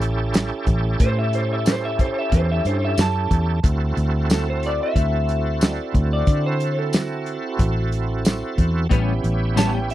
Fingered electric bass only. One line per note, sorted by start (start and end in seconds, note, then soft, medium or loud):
0.00 0.50 A1 loud
0.67 0.95 A1 medium
1.00 2.10 A2 medium
2.32 2.59 E2 medium
2.65 2.95 G2 medium
2.98 3.28 F#2 medium
3.31 3.61 E2 medium
3.64 3.92 D2 medium
3.97 4.79 D2 medium
4.96 5.78 D2 loud
5.94 6.22 D2 loud
6.27 7.37 D3 medium
7.59 8.41 A1 medium
8.58 8.85 E2 medium
8.91 9.19 A1 medium
9.24 9.94 A1 medium